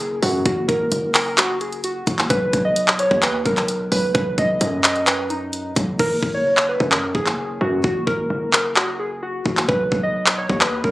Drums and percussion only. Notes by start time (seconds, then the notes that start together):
0.23 open hi-hat
0.46 kick, closed hi-hat
0.69 kick, closed hi-hat
0.92 closed hi-hat
1.14 clap, open hi-hat
1.38 clap, closed hi-hat
1.61 closed hi-hat
1.73 closed hi-hat
1.84 closed hi-hat
2.07 kick, closed hi-hat
2.19 clap
2.30 kick, closed hi-hat
2.53 kick, closed hi-hat
2.76 closed hi-hat
2.88 clap
2.99 closed hi-hat
3.11 kick
3.22 clap, closed hi-hat
3.46 kick, closed hi-hat
3.57 clap, closed hi-hat
3.68 closed hi-hat
3.92 open hi-hat
4.15 kick, closed hi-hat
4.38 kick, closed hi-hat
4.61 closed hi-hat
4.84 clap, closed hi-hat
4.96 closed hi-hat
5.07 clap, closed hi-hat
5.30 closed hi-hat
5.53 closed hi-hat
5.76 kick, closed hi-hat
5.99 kick, crash
6.23 kick
6.57 clap
6.80 kick
6.92 clap
7.15 kick
7.26 clap
7.84 kick
8.07 kick
8.53 clap
8.76 clap
9.46 kick
9.57 clap
9.69 kick
9.92 kick
10.26 clap
10.49 kick
10.61 clap
10.84 kick